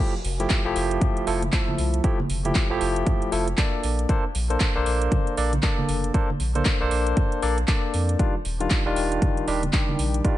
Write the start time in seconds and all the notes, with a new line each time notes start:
0.00 F3 A3 E4 G4
0.25 F1, open hi-hat
0.40 F3 A3 E4 G4, closed hi-hat
0.50 kick, clap, closed hi-hat
0.65 F1 F3 A3 E4 G4
0.76 F1, open hi-hat
0.91 closed hi-hat
1.01 kick, closed hi-hat, high conga, low conga
1.17 closed hi-hat
1.27 F1 F3 A3 E4 A4, open hi-hat
1.42 closed hi-hat, high conga
1.52 F3 A3 E4 A4, kick, clap, closed hi-hat
1.68 high conga
1.78 C2, open hi-hat
1.94 closed hi-hat
2.04 F3 A3 E4 G4, kick, closed hi-hat
2.20 high conga
2.30 F1, open hi-hat
2.45 F3 A3 E4 G4, closed hi-hat, high conga
2.55 kick, clap, closed hi-hat
2.70 F1 F3 A3 E4 G4
2.81 F1, open hi-hat
2.96 closed hi-hat
3.07 kick, closed hi-hat, low conga
3.22 closed hi-hat
3.32 F1 F3 A3 E4 A4, open hi-hat
3.48 closed hi-hat
3.58 A#3 D4 A4 D5, kick, clap, closed hi-hat
3.83 A#1, open hi-hat
3.99 closed hi-hat
4.09 A#3 D4 A4 C5, kick, closed hi-hat
4.35 A#1, open hi-hat
4.50 A#3 D4 A4 C5, closed hi-hat
4.60 kick, clap, closed hi-hat
4.75 A#1 A#3 D4 A4 C5
4.86 A#1, open hi-hat
5.02 closed hi-hat
5.11 kick, closed hi-hat, high conga, low conga
5.27 closed hi-hat
5.37 A#1 A#3 D4 A4 D5, open hi-hat
5.53 closed hi-hat, high conga
5.63 A#3 D4 A4 D5, kick, clap, closed hi-hat
5.78 high conga
5.89 F1, open hi-hat
6.04 closed hi-hat
6.14 A#3 D4 A4 C5, kick, closed hi-hat
6.30 high conga
6.40 A#1, open hi-hat
6.55 A#3 D4 A4 C5, closed hi-hat, high conga
6.65 kick, clap, closed hi-hat
6.80 A#1 A#3 D4 A4 C5
6.91 A#1, open hi-hat
7.07 closed hi-hat
7.17 kick, closed hi-hat, low conga
7.32 closed hi-hat
7.42 A#1 A#3 D4 A4 D5, open hi-hat
7.58 closed hi-hat
7.68 A#3 D4 A4 D5, kick, clap, closed hi-hat
7.94 F2, open hi-hat
8.09 closed hi-hat
8.19 D#3 G3 D4 F4, kick, closed hi-hat
8.45 D#1, open hi-hat
8.60 D#3 G3 D4 F4, closed hi-hat
8.70 kick, clap, closed hi-hat
8.86 D#1 D#3 G3 D4 F4
8.96 D#1, open hi-hat
9.12 closed hi-hat
9.22 kick, closed hi-hat, high conga, low conga
9.37 closed hi-hat
9.47 D#1 D#3 G3 D4 G4, open hi-hat
9.63 closed hi-hat, high conga
9.73 D#3 G3 D4 G4, kick, clap, closed hi-hat
9.89 high conga
9.99 A#1, open hi-hat
10.14 closed hi-hat
10.24 D#3 G3 D4 F4, kick, closed hi-hat